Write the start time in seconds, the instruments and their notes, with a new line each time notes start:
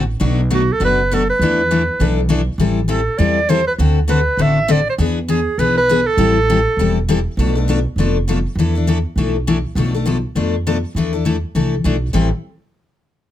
Already playing: upright bass A1
0.20 upright bass B1, steel-string acoustic guitar B2 F#3 A3 D4 F#4
0.50 steel-string acoustic guitar B2 F#3 A3 D4 F#4
0.54 clarinet F#4
0.73 clarinet A4
0.80 upright bass F#1, steel-string acoustic guitar B2 F#3 A3 D4 F#4
0.85 clarinet B4
1.11 steel-string acoustic guitar B2 F#3 A3 D4 F#4, clarinet A4
1.30 clarinet B4
1.39 upright bass E2, steel-string acoustic guitar E3 A3 D4 E4 A4
1.71 steel-string acoustic guitar E3 A3 D4 E4 A4
1.99 upright bass B1, steel-string acoustic guitar E3 A3 D4 E4 A4
2.29 steel-string acoustic guitar E3 A3 D4 E4 A4
2.58 upright bass A1, steel-string acoustic guitar E3 G3 C4 E4 A4
2.88 steel-string acoustic guitar E3 G3 C4 E4 A4, clarinet A4
3.18 upright bass E2, steel-string acoustic guitar E3 G3 C4 E4 A4, clarinet D5
3.49 steel-string acoustic guitar E3 G3 C4 E4 A4, clarinet C5
3.67 clarinet B4
3.78 upright bass D2, steel-string acoustic guitar D3 A3 C4 F#4 A4
4.08 steel-string acoustic guitar D3 A3 C4 F#4 A4, clarinet B4
4.37 upright bass A1, steel-string acoustic guitar D3 A3 C4 F#4 A4
4.42 clarinet E5
4.68 steel-string acoustic guitar D3 A3 C4 F#4 A4, clarinet D5
4.90 clarinet C5
4.98 upright bass E2, steel-string acoustic guitar E3 B3 D4 G#4
5.28 steel-string acoustic guitar E3 B3 D4 G#4, clarinet G#4
5.58 upright bass B1, steel-string acoustic guitar E3 B3 D4 G#4, clarinet B4
5.77 clarinet B4
5.89 steel-string acoustic guitar E3 B3 D4 G#4
6.07 clarinet A4
6.17 upright bass A1, steel-string acoustic guitar E3 G3 C4 E4 A4
6.50 steel-string acoustic guitar E3 G3 C4 E4 A4
6.77 upright bass E1, steel-string acoustic guitar E3 G3 C4 E4
6.81 steel-string acoustic guitar A4
7.08 steel-string acoustic guitar E3 G3 C4 E4 A4
7.37 upright bass B1, steel-string acoustic guitar B2 F3 A3 D4 A4
7.55 steel-string acoustic guitar A3 D4 A4
7.68 steel-string acoustic guitar B2 F3 A3 D4 A4
7.96 upright bass F1, steel-string acoustic guitar B2 F3 A3 D4
8.00 steel-string acoustic guitar A4
8.28 steel-string acoustic guitar B2 F3 A3 D4 A4
8.55 upright bass E2, steel-string acoustic guitar E3 A3 D4
8.60 steel-string acoustic guitar E4 A4
8.75 steel-string acoustic guitar D4 E4 A4
8.87 steel-string acoustic guitar E3 A3 D4 E4 A4
9.16 upright bass B1, steel-string acoustic guitar E3 A3 D4 E4 A4
9.47 steel-string acoustic guitar E3 A3 D4 E4 A4
9.75 upright bass B1, steel-string acoustic guitar B2 F3 A3 D4 A4
9.94 steel-string acoustic guitar A3 D4 A4
10.06 steel-string acoustic guitar B2 F3 A3 D4 A4
10.35 upright bass F2, steel-string acoustic guitar B2 F3 A3 D4 A4
10.67 steel-string acoustic guitar B2 F3 A3 D4 A4
10.95 upright bass E2, steel-string acoustic guitar E3 A3 D4 E4 A4
11.13 steel-string acoustic guitar D4 E4 A4
11.25 steel-string acoustic guitar E3 A3 D4 E4 A4
11.55 upright bass C2, steel-string acoustic guitar E3 A3 D4 E4 A4
11.84 upright bass B1, steel-string acoustic guitar E3 A3 D4 E4 A4
12.13 upright bass A1, steel-string acoustic guitar A2 E3 G3 C4 E4 A4